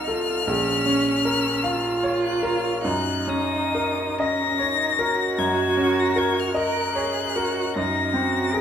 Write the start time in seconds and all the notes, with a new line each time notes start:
Already playing: C2 D#4 A4 D#5 F5 F6
0.08 F4 A4
0.47 A#1 C#4
0.86 C#4
1.25 A#4
1.64 F4 F5
2.03 C#5
2.23 F#6
2.43 A#4 F6
2.83 F#2 D#4 F#6
3.27 C#4 D#6
3.75 A#4
4.19 C#4 D#5 A#6
4.59 D#4 C#5
4.99 F#4 A#4
5.38 F#2 G#6
5.77 C#4
6.00 A#6
6.16 A#4 G#6
6.40 F6
6.55 A#4 D#5 F#6
6.95 G#4 C#5
7.36 F#4 A#4
7.76 F#2 D#4 A#6
8.14 C4 F#4
8.54 G#4 A#4